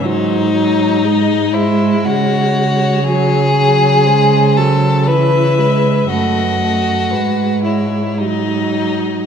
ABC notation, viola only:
X:1
M:3/4
L:1/8
Q:1/4=59
K:C#m
V:1 name="Viola" clef=bass
F, F, G,4 | F, F, G, F, E, G, | A, A, G,2 F,2 |]